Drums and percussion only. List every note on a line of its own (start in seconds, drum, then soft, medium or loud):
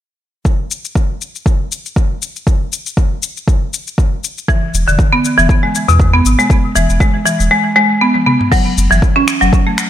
0.45 kick loud
0.45 shaker soft
0.71 shaker medium
0.85 shaker medium
0.95 kick loud
0.95 shaker soft
1.21 shaker medium
1.35 shaker soft
1.46 kick loud
1.46 shaker soft
1.72 shaker medium
1.86 shaker soft
1.96 kick loud
1.96 shaker soft
2.22 shaker medium
2.36 shaker soft
2.47 kick loud
2.47 shaker soft
2.73 shaker medium
2.86 shaker medium
2.97 kick loud
2.97 shaker soft
3.23 shaker medium
3.37 shaker soft
3.48 kick loud
3.48 shaker soft
3.73 shaker medium
3.87 shaker soft
3.98 kick loud
3.98 shaker soft
4.24 shaker medium
4.38 shaker soft
4.48 kick loud
4.48 shaker soft
4.74 shaker medium
4.88 shaker medium
4.99 kick loud
4.99 shaker soft
5.25 shaker medium
5.39 shaker medium
5.49 kick loud
5.49 shaker soft
5.75 shaker medium
5.89 shaker medium
6.00 kick loud
6.00 shaker soft
6.26 shaker loud
6.39 shaker medium
6.50 kick loud
6.50 shaker soft
6.76 shaker loud
6.90 shaker medium
7.00 kick loud
7.00 shaker soft
7.26 shaker medium
7.40 shaker medium
8.15 high tom soft
8.27 mid tom medium
8.41 mid tom medium
8.52 kick loud
8.52 crash medium
8.52 shaker soft
8.78 shaker loud
8.92 shaker soft
9.02 kick loud
9.02 shaker soft
9.28 finger snap medium
9.28 shaker medium
9.42 shaker medium
9.53 kick loud
9.53 shaker soft
9.78 finger snap medium
9.78 shaker medium